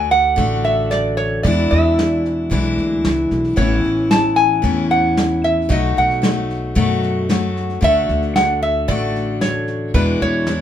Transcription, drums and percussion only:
0.11 snare soft
0.38 kick medium
0.38 snare soft
0.65 snare soft
0.92 snare medium
1.19 snare soft
1.45 kick medium
1.45 snare soft
1.72 snare soft
1.99 snare medium
2.25 snare soft
2.51 kick medium
2.51 snare soft
2.78 snare soft
3.04 snare medium
3.31 snare soft
3.45 snare soft
3.58 kick medium
3.58 snare soft
3.84 snare soft
4.11 snare medium
4.37 snare soft
4.64 kick medium
4.64 snare soft
4.91 snare soft
5.17 snare medium
5.44 snare soft
5.70 kick medium
5.70 snare soft
5.97 snare soft
6.10 snare soft
6.23 snare medium
6.50 snare soft
6.76 kick medium
6.76 snare soft
7.03 snare soft
7.30 snare medium
7.57 snare soft
7.70 snare soft
7.82 kick medium
7.82 snare soft
8.09 snare soft
8.22 snare soft
8.36 snare medium
8.62 snare soft
8.89 kick medium
8.89 snare soft
9.16 snare soft
9.42 snare medium
9.68 snare soft
9.94 kick medium
9.94 snare soft
10.21 snare soft
10.47 snare medium

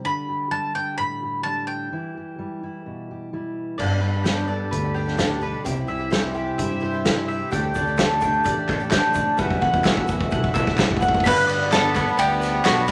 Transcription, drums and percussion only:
3.79 kick soft
3.79 crash medium
4.26 kick medium
4.26 snare loud
4.26 closed hi-hat medium
4.72 kick soft
4.72 closed hi-hat medium
5.08 snare soft
5.19 kick medium
5.19 snare loud
5.19 closed hi-hat medium
5.66 kick medium
5.66 closed hi-hat medium
6.12 kick medium
6.12 snare loud
6.12 closed hi-hat medium
6.59 kick medium
6.59 closed hi-hat medium
7.05 kick medium
7.05 snare loud
7.05 closed hi-hat medium
7.51 kick medium
7.51 closed hi-hat medium
7.51 shaker medium
7.74 kick medium
7.74 shaker loud
7.86 shaker soft
7.97 kick medium
7.97 snare loud
7.97 clap medium
7.97 closed hi-hat medium
7.97 shaker medium
8.21 kick medium
8.21 shaker loud
8.44 kick medium
8.44 closed hi-hat medium
8.44 shaker medium
8.68 kick loud
8.68 clap medium
8.79 shaker soft
8.91 kick medium
8.91 snare loud
8.91 clap loud
8.91 closed hi-hat medium
8.91 shaker medium
9.14 kick medium
9.14 shaker loud
9.37 kick loud
9.37 shaker medium
9.50 kick medium
9.62 kick loud
9.72 kick loud
9.72 shaker soft
9.83 kick loud
9.83 snare loud
9.83 clap medium
9.83 shaker medium
9.97 kick loud
10.07 kick loud
10.07 shaker loud
10.21 kick loud
10.31 kick loud
10.31 shaker medium
10.44 kick loud
10.54 kick loud
10.54 clap medium
10.54 shaker medium
10.67 kick loud
10.67 snare soft
10.78 kick loud
10.78 snare loud
10.78 clap medium
10.78 shaker medium
10.91 kick loud
10.97 kick loud
11.01 kick loud
11.01 shaker medium
11.08 kick loud
11.13 kick loud
11.13 shaker soft
11.20 kick loud
11.20 shaker medium
11.26 kick loud
11.26 crash loud
11.48 ride medium
11.48 shaker medium
11.60 snare soft
11.60 shaker soft
11.72 snare loud
11.72 clap medium
11.72 ride medium
11.72 shaker loud
11.95 kick loud
11.95 clap medium
11.95 ride medium
11.95 shaker medium
12.07 shaker soft
12.18 ride loud
12.18 shaker loud
12.41 snare soft
12.41 ride medium
12.41 shaker medium
12.64 snare loud
12.64 clap loud
12.64 ride loud
12.64 shaker loud
12.76 shaker soft
12.87 shaker medium

